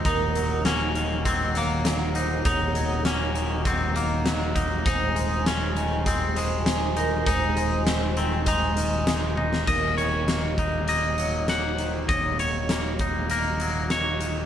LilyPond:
<<
  \new Staff \with { instrumentName = "Vibraphone" } { \time 4/4 \key ees \dorian \tempo 4 = 100 bes'4 r8 ees''4 des''4 c''8 | des''8 des''4 r8 ees''4 ees''4 | c''4 r8 ees''4 c''4 bes'8 | c''8 c''4 r8 ees''4 ees''4 |
bes'4 r8 ees''4 des''4 c''8 | des''8 des''4 r8 ees''4 ees''4 | }
  \new Staff \with { instrumentName = "Brass ensemble" } { \time 4/4 \key ees \dorian << { ges''1~ | ges''1 | aes''1~ | aes''1 |
ees''1 | f''1 | } \\ { <des bes' ees''>1~ | <des bes' ees''>1 | <ees' aes' c''>1~ | <ees' aes' c''>1 |
<des' ges' bes'>1~ | <des' ges' bes'>1 | } >> }
  \new Staff \with { instrumentName = "Clean electric guitar" } { \time 4/4 \key ees \dorian ees'4 des'4 c'8 bes4. | ees'4 des'4 c'8 bes4. | ees'4 des'4 c'8 aes4 r8 | ees'4 r8 c'8 ees'4. r8 |
ees''8 des''4 r8 ees''4 ges''8. r16 | ees''8 des''4 r8 bes'4 des''8. r16 | }
  \new Staff \with { instrumentName = "Clean electric guitar" } { \clef bass \time 4/4 \key ees \dorian ees,8 ges8 bes8 ees8 ges8 ees8 ges8 ees'8 | ees,8 ges8 bes8 ees8 ges8 ees8 ges8 ees'8 | aes,8 aes4 ees8 aes8 ees8 aes8 ees'8 | aes,8 aes8 c'8 ees8 aes8 ees8 aes8 ees'8 |
ees,8 ees8 bes8 ees'8 bes8 ges8 bes8 ees8 | ees,8 ees8 bes8 ees'8 bes8 ges8 bes8 ees8 | }
  \new Staff \with { instrumentName = "Fingered electric bass" } { \clef bass \time 4/4 \key ees \dorian ees,,1 | ees,,1 | ees,,1 | ees,,1 |
ees,,1 | ees,,1 | }
  \new DrumStaff \with { instrumentName = "Drums" } \drummode { \time 4/4 <hh bd>8 hh8 <hh sn>8 hh8 <hh bd>8 hh8 <hh sn>8 hh8 | <hh bd>8 hh8 <hh sn>8 hh8 <hh bd>8 hh8 <hh sn>8 <hh bd>8 | <hh bd>8 hh8 <hh sn>8 hh8 <hh bd>8 hh8 <hh sn>8 hh8 | <hh bd>8 hh8 <hh sn>8 hh8 <hh bd>8 hh8 <hh sn>8 tommh16 sn16 |
<cymc bd>8 hh8 <hh sn>8 <hh bd>8 hh8 hh8 <hh sn>8 hh8 | <hh bd>8 hh8 <hh sn>8 <hh bd>8 hh8 hh8 <hh sn>8 hh8 | }
>>